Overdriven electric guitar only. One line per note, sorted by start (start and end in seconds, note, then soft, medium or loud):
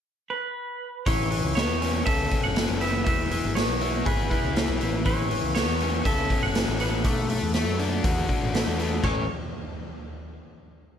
1.07 1.31 E3 medium
1.31 2.57 E3 medium
1.57 2.81 B3 medium
1.82 2.30 C#4 medium
2.06 3.06 A4 medium
2.31 3.07 C#4 medium
2.57 3.06 E3 medium
2.81 3.56 B3 medium
3.06 3.30 E3 medium
3.32 4.54 E3 medium
3.56 5.55 B3 medium
3.81 4.29 E4 medium
4.06 4.81 G#4 medium
4.30 4.81 E4 medium
4.56 4.79 E3 medium
4.81 5.04 E3 medium
5.05 5.29 E3 medium
5.30 6.54 E3 medium
5.55 6.81 B3 medium
5.81 6.30 C#4 medium
6.06 8.04 A4 medium
6.31 7.05 C#4 medium
6.56 7.05 E3 medium
6.81 7.05 B3 medium
7.05 7.29 A3 medium
7.30 7.53 A3 medium
7.54 8.53 A3 medium
7.79 8.27 D4 medium
8.04 9.04 F#4 medium
8.28 9.03 D4 medium
8.54 8.78 A3 medium
8.79 9.03 A3 medium
9.04 9.23 E3 medium
9.04 9.24 A3 medium
9.04 9.24 C#4 loud